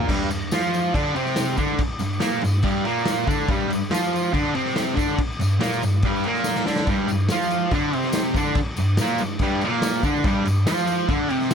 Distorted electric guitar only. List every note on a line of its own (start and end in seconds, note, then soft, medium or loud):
0.08 0.29 G2 loud
0.08 0.30 G3 medium
0.30 0.47 G2 medium
0.52 0.94 F3 medium
0.52 0.94 F4 loud
0.94 1.15 D3 medium
0.94 1.15 D4 loud
1.15 1.57 C3 medium
1.15 1.57 C4 medium
1.57 1.78 D3 medium
1.57 1.79 D4 loud
2.00 2.18 G2 medium
2.20 2.42 A#2 medium
2.20 2.42 A#3 medium
2.42 2.60 G2 medium
2.63 2.85 G2 medium
2.63 2.85 G3 loud
2.84 3.27 A#2 medium
2.84 3.27 A#3 loud
3.27 3.48 D3 loud
3.27 3.49 D4 loud
3.49 3.67 G2 medium
3.49 3.70 G3 loud
3.69 3.87 G2 medium
3.90 4.32 F3 medium
3.90 4.33 F4 loud
4.33 4.54 D3 loud
4.33 4.55 D4 loud
4.55 4.95 C3 medium
4.55 4.96 C4 loud
4.96 5.17 D3 medium
4.96 5.18 D4 loud
5.40 5.57 G2 medium
5.60 5.81 A#2 loud
5.60 5.82 A#3 loud
5.83 6.00 G2 medium
6.05 6.25 G2 medium
6.05 6.25 G3 loud
6.25 6.66 A#2 medium
6.25 6.67 A#3 loud
6.67 6.88 D3 loud
6.67 6.88 D4 loud
6.88 7.07 G2 loud
6.88 7.10 G3 loud
7.08 7.26 G2 medium
7.31 7.72 F3 medium
7.31 7.73 F4 loud
7.72 7.94 D3 medium
7.72 7.95 D4 loud
7.94 8.36 C3 medium
7.94 8.36 C4 medium
8.36 8.57 D3 loud
8.36 8.57 D4 loud
8.79 8.95 G2 medium
9.01 9.20 A#2 loud
9.01 9.21 A#3 loud
9.20 9.37 G2 medium
9.41 9.62 G2 medium
9.41 9.62 G3 loud
9.64 10.04 A#2 medium
9.64 10.04 A#3 loud
10.04 10.25 D3 loud
10.04 10.25 D4 loud
10.24 10.44 G2 loud
10.24 10.46 G3 loud
10.45 10.63 G2 medium
10.66 11.09 F3 medium
10.66 11.09 F4 loud
11.09 11.31 D3 medium
11.09 11.31 D4 loud
11.31 11.54 C3 medium
11.31 11.54 C4 loud